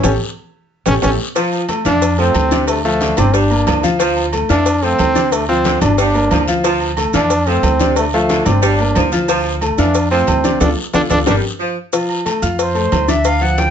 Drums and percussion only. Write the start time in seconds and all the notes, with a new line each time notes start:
0.03 cowbell, high conga, high timbale, long guiro, maracas
0.86 cowbell, high conga, high timbale, long guiro, maracas
1.02 cowbell, high conga, high timbale, long guiro, maracas
1.36 cowbell, high conga, low agogo, maracas
1.53 high conga, low agogo, maracas
1.69 cowbell, high conga, low timbale, low agogo, short guiro, maracas
1.85 high conga, short guiro, maracas
2.02 cowbell, high conga, low agogo, long guiro, maracas
2.18 high conga, low agogo, maracas
2.34 cowbell, high conga, low timbale, low agogo, short guiro, maracas
2.51 cowbell, high conga, short guiro, maracas
2.67 cowbell, low agogo, long guiro, maracas
2.85 high conga, maracas
3.01 cowbell, high conga, low timbale, low agogo, short guiro, maracas
3.17 cowbell, high conga, low conga, low agogo, short guiro, maracas
3.34 cowbell, high conga, long guiro, maracas
3.51 high conga, low agogo, maracas
3.67 cowbell, high conga, low timbale, low agogo, short guiro, maracas
3.83 high conga, short guiro, maracas
3.99 cowbell, high conga, low agogo, long guiro, maracas
4.16 high conga, low agogo, maracas
4.33 cowbell, high conga, low timbale, low agogo, short guiro, maracas
4.49 high conga, short guiro, maracas
4.66 cowbell, high conga, low agogo, long guiro, maracas
4.82 high conga, low agogo, maracas
4.99 cowbell, high conga, low timbale, low agogo, short guiro, maracas
5.15 cowbell, high conga, short guiro, maracas
5.31 cowbell, high conga, low agogo, long guiro, maracas
5.49 high conga, maracas
5.65 cowbell, high conga, low timbale, low agogo, short guiro, maracas
5.81 cowbell, high conga, low conga, low agogo, short guiro, maracas
5.98 cowbell, high conga, long guiro, maracas
6.14 high conga, low agogo, maracas
6.31 cowbell, high conga, low timbale, low agogo, short guiro, maracas
6.48 high conga, short guiro, maracas
6.64 cowbell, high conga, low agogo, long guiro, maracas
6.81 high conga, low agogo, maracas
6.97 cowbell, high conga, low timbale, low agogo, short guiro, maracas
7.13 high conga, short guiro, maracas
7.30 cowbell, high conga, low agogo, long guiro, maracas
7.47 high conga, low agogo, maracas
7.63 cowbell, high conga, low timbale, low agogo, short guiro, maracas
7.80 cowbell, high conga, short guiro, maracas
7.96 cowbell, low agogo, long guiro, maracas
8.13 high conga, maracas
8.29 cowbell, high conga, low timbale, low agogo, short guiro, maracas
8.45 cowbell, high conga, low conga, low agogo, short guiro, maracas
8.63 cowbell, high conga, long guiro, maracas
8.78 high conga, low agogo, maracas
8.95 cowbell, high conga, low timbale, low agogo, short guiro, maracas
9.12 high conga, short guiro, maracas
9.28 cowbell, high conga, low agogo, long guiro, maracas
9.45 high conga, low agogo, maracas
9.61 cowbell, high conga, low timbale, low agogo, short guiro, maracas
9.78 high conga, short guiro, maracas
9.94 cowbell, high conga, low agogo, long guiro, maracas
10.11 high conga, low agogo, maracas
10.27 cowbell, high conga, low timbale, low agogo, short guiro, maracas
10.44 cowbell, high conga, short guiro, maracas
10.60 cowbell, high conga, high timbale, long guiro, maracas
10.93 cowbell, high conga, high timbale, long guiro, maracas
11.10 cowbell, high conga, high timbale, long guiro, maracas
11.27 cowbell, high conga, high timbale, long guiro, maracas
11.93 cowbell, high conga, low agogo, long guiro, maracas
12.09 high conga, low agogo, maracas
12.26 cowbell, high conga, low timbale, low agogo, short guiro, maracas
12.42 high conga, short guiro, maracas
12.59 cowbell, high conga, low agogo, long guiro, maracas
12.75 high conga, low agogo, maracas
12.92 cowbell, high conga, low timbale, low agogo, short guiro, maracas
13.08 cowbell, high conga, short guiro, maracas
13.25 cowbell, high conga, low agogo, long guiro, maracas
13.41 high conga, maracas
13.58 cowbell, high conga, low timbale, low agogo, short guiro, maracas